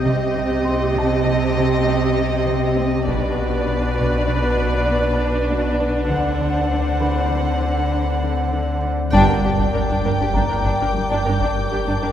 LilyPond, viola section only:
\new Staff \with { instrumentName = "Viola section" } { \time 5/4 \key d \phrygian \tempo 4 = 99 << { g'1~ g'4 | b'1~ b'4 | c''1~ c''8 r8 | \key g \minor r1 r4 | } \\ { c'1~ c'4 | d'1~ d'4~ | d'1~ d'8. r16 | d'16 d'16 d'16 d'16 d'16 d'16 d'16 d'16 d'16 d'16 d'16 d'16 r16 d'16 d'16 d'16 r16 d'16 d'16 d'16 | } >> }